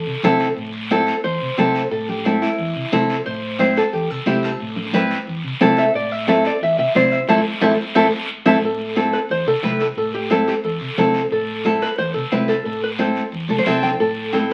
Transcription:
Already playing: nylon-string guitar A4
0.07 fingered electric bass C3
0.23 fingered electric bass C3, nylon-string guitar C4 E4 A4, high conga, low conga, short guiro
0.40 short guiro
0.57 fingered electric bass A2, high conga, long guiro
0.90 nylon-string guitar C4 E4 A4, high conga, short guiro
1.07 short guiro
1.24 fingered electric bass E2, nylon-string guitar C5, high conga, long guiro
1.41 fingered electric bass C3
1.58 fingered electric bass C3, nylon-string guitar C4 E4 A4, high conga, short guiro
1.75 short guiro
1.91 fingered electric bass A2, nylon-string guitar A4, high conga, long guiro
2.09 nylon-string guitar G4, low conga
2.25 nylon-string guitar C4 E4 A4, high conga, short guiro
2.42 nylon-string guitar E4, short guiro
2.58 fingered electric bass E2, high conga, long guiro
2.76 fingered electric bass C3
2.92 fingered electric bass C3, nylon-string guitar C4 E4 A4, high conga, low conga, short guiro
3.09 short guiro
3.26 fingered electric bass A2, nylon-string guitar C5, high conga, long guiro
3.59 nylon-string guitar C4 E4 C5, high conga, short guiro
3.76 nylon-string guitar A4, short guiro
3.93 fingered electric bass E2, nylon-string guitar G4, high conga, long guiro
4.10 fingered electric bass C3, nylon-string guitar A4
4.26 fingered electric bass C3, nylon-string guitar C4 E4 G4, high conga, short guiro
4.43 nylon-string guitar A4, short guiro
4.59 fingered electric bass A2, high conga, long guiro
4.76 low conga
4.93 nylon-string guitar C4 E4 B4, high conga, short guiro
5.11 short guiro
5.27 fingered electric bass E2, high conga, long guiro
5.44 fingered electric bass C3
5.61 fingered electric bass C3, nylon-string guitar C4 E4 A4, high conga, low conga, short guiro
5.77 nylon-string guitar E5, short guiro
5.94 fingered electric bass A2, nylon-string guitar D5, long guiro
6.11 nylon-string guitar E5
6.27 nylon-string guitar C4 E4 A4 E5, high conga, short guiro
6.44 nylon-string guitar D5, short guiro
6.61 fingered electric bass E2, nylon-string guitar E5, high conga, long guiro
6.78 fingered electric bass C3, nylon-string guitar E5
6.95 fingered electric bass C3, nylon-string guitar C4 E4 C5 D5, high conga, short guiro
7.11 nylon-string guitar E5, short guiro
7.27 fingered electric bass A1, nylon-string guitar C4 E4 A4 C5 E5 A5, high conga, long guiro
7.61 fingered electric bass A1, nylon-string guitar C4 E4 A4 C5 E5 A5, high conga, long guiro
7.95 fingered electric bass A1, nylon-string guitar C4 E4 A4 C5 E5 A5, high conga, long guiro
8.45 fingered electric bass A1, nylon-string guitar C4 E4 A4 C5 E5 A5, high conga, long guiro
8.62 fingered electric bass A2, nylon-string guitar A4, high conga, long guiro
8.96 nylon-string guitar C4 E4 A4, high conga, short guiro
9.13 nylon-string guitar B4, short guiro
9.29 fingered electric bass E2, nylon-string guitar C5, high conga, long guiro
9.46 fingered electric bass C3, nylon-string guitar A4
9.62 fingered electric bass C3, nylon-string guitar C4 E4 B4, high conga, short guiro
9.80 nylon-string guitar A4, short guiro
9.96 fingered electric bass A2, nylon-string guitar A4, high conga, long guiro
10.14 nylon-string guitar G4
10.30 nylon-string guitar C4 E4 A4, high conga, short guiro
10.48 nylon-string guitar G4, short guiro
10.64 fingered electric bass E2, nylon-string guitar A4, high conga, long guiro
10.81 fingered electric bass C3
10.98 fingered electric bass C3, nylon-string guitar C4 E4 A4, high conga, low conga, short guiro
11.14 short guiro
11.31 fingered electric bass A2, nylon-string guitar A4, high conga, long guiro
11.65 nylon-string guitar C4 E4 A4, high conga, short guiro
11.82 nylon-string guitar B4, short guiro
11.98 fingered electric bass E2, nylon-string guitar C5, high conga, long guiro
12.14 fingered electric bass C3, nylon-string guitar A4
12.31 fingered electric bass C3, nylon-string guitar C4 E4 B4, high conga, short guiro
12.48 nylon-string guitar A4, short guiro
12.65 fingered electric bass A2, nylon-string guitar A4, high conga, long guiro
12.84 nylon-string guitar B4
12.98 nylon-string guitar C4 E4 A4 C5, high conga, short guiro
13.15 short guiro
13.32 fingered electric bass E2, high conga, long guiro
13.49 fingered electric bass C3, nylon-string guitar A4, high conga
13.59 nylon-string guitar C5
13.66 fingered electric bass C3, nylon-string guitar C4 E4 A4 E5, short guiro
13.83 nylon-string guitar G5, low conga, short guiro
14.00 fingered electric bass A2, nylon-string guitar A4, high conga, long guiro
14.32 nylon-string guitar C4 E4 A4, high conga, short guiro

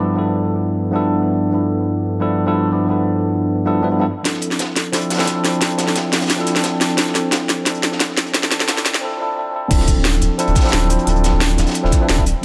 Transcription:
Already playing: tine electric piano G2
0.00 tine electric piano F3 B3 D4 E4 D5
0.14 tine electric piano G2 F3 B3 D4 E4
0.19 tine electric piano A4
0.91 tine electric piano G2 F3 B3 D4
0.95 tine electric piano E4 A4
1.50 tine electric piano G2 F3 B3 D4
1.54 tine electric piano E4 A4
2.19 tine electric piano G2 F3 B3 D4 E4 A4
2.45 tine electric piano G2 F3 B3 D4 E4 A4
2.71 tine electric piano G2 F3 B3 D4 E4 D5
2.86 tine electric piano G2 F3 B3 D4 E4
2.91 tine electric piano A4
3.65 tine electric piano G2 F3 B3 D4 E4 A4
3.82 tine electric piano G2 F3 B3 D4 E4 B4
3.90 tine electric piano G2 F3 B3 D4 E4 A4
3.99 tine electric piano G2 F3 B3 D4 E4 A4
4.23 tine electric piano F3 C4 D4 E4, kick, snare, closed hi-hat
4.28 tine electric piano A4
4.34 snare
4.42 closed hi-hat
4.51 snare
4.59 kick, snare, closed hi-hat
4.76 snare, closed hi-hat
4.92 tine electric piano F3 C4 D4 E4 A4, kick, snare, closed hi-hat
5.01 closed hi-hat
5.10 snare, closed hi-hat
5.14 tine electric piano F3, snare, closed hi-hat
5.19 tine electric piano C4 D4 E4 A4, snare, closed hi-hat
5.23 snare, closed hi-hat
5.27 kick, snare, closed hi-hat
5.43 tine electric piano F3 C4 D4 E4 C5, snare, closed hi-hat
5.53 closed hi-hat
5.59 tine electric piano F3 C4 D4 E4, kick, snare, closed hi-hat
5.64 tine electric piano A4
5.70 closed hi-hat
5.78 snare, closed hi-hat
5.87 snare
5.96 kick, snare, closed hi-hat
6.13 snare, closed hi-hat
6.21 snare, closed hi-hat
6.26 snare, closed hi-hat
6.30 kick, snare, closed hi-hat
6.36 tine electric piano F3 C4 D4 E4, snare
6.41 tine electric piano A4
6.46 snare, closed hi-hat
6.56 snare
6.64 kick, snare, closed hi-hat
6.81 snare, closed hi-hat
6.89 snare
6.96 tine electric piano F3 C4 D4 E4, kick, snare, closed hi-hat
7.00 tine electric piano A4
7.07 snare
7.15 snare, closed hi-hat
7.32 kick, snare, closed hi-hat
7.49 snare, closed hi-hat
7.64 tine electric piano F3 C4 D4 E4, kick, snare, closed hi-hat
7.69 tine electric piano A4
7.75 closed hi-hat
7.83 snare, closed hi-hat
7.92 snare
8.00 kick, snare, closed hi-hat
8.17 snare, closed hi-hat
8.27 closed hi-hat
8.32 tine electric piano F3 C4 D4 E4, kick, snare, closed hi-hat
8.37 tine electric piano A4
8.43 snare, closed hi-hat
8.51 snare, closed hi-hat
8.60 snare
8.66 tine electric piano F3 C4 D4 E4, kick, snare, closed hi-hat
8.71 tine electric piano A4
8.77 snare
8.85 snare, closed hi-hat
8.94 snare
9.00 tine electric piano F3 C4 D4 E4
9.05 tine electric piano A4
9.17 tine electric piano F3 C4 D4 E4
9.22 tine electric piano A4
9.34 tine electric piano F3 C4 D4 E4
9.39 tine electric piano A4
9.51 tine electric piano F3 C4 D4 E4
9.56 tine electric piano A4
9.68 sub bass D1, tine electric piano F3 C4 D4 E4, kick, closed hi-hat, crash
9.73 tine electric piano A4
9.80 snare
9.87 kick, closed hi-hat, shaker
9.97 sub bass D1
10.05 snare, closed hi-hat
10.22 sub bass D1, closed hi-hat, shaker
10.38 tine electric piano F3 C4 D4 E4 A4, closed hi-hat
10.47 sub bass D1, closed hi-hat
10.55 kick, snare, closed hi-hat, shaker
10.61 tine electric piano F3 C4, snare, closed hi-hat
10.64 tine electric piano D4 E4 A4, snare, closed hi-hat
10.69 snare, closed hi-hat
10.72 sub bass D1, snare, closed hi-hat
10.89 tine electric piano F3 C4 D4 E4 C5, closed hi-hat, open hi-hat, shaker
10.99 closed hi-hat
11.04 sub bass D1, tine electric piano F3 C4 D4 E4, closed hi-hat
11.09 tine electric piano A4
11.16 closed hi-hat
11.24 snare, closed hi-hat, shaker
11.33 sub bass D1
11.41 snare, closed hi-hat
11.58 sub bass D1, snare, closed hi-hat, shaker
11.67 snare, closed hi-hat
11.70 snare, closed hi-hat
11.74 closed hi-hat
11.83 sub bass D1, tine electric piano F3 C4 D4 E4 A4, snare
11.92 kick, snare, closed hi-hat, shaker
12.00 tine electric piano F3 C4 D4 E4 B4
12.08 sub bass D1, tine electric piano F3 C4 D4 E4 A4, snare, closed hi-hat
12.17 tine electric piano F3 C4 D4 E4 A4, kick
12.26 closed hi-hat, open hi-hat, shaker
12.41 tine electric piano F3

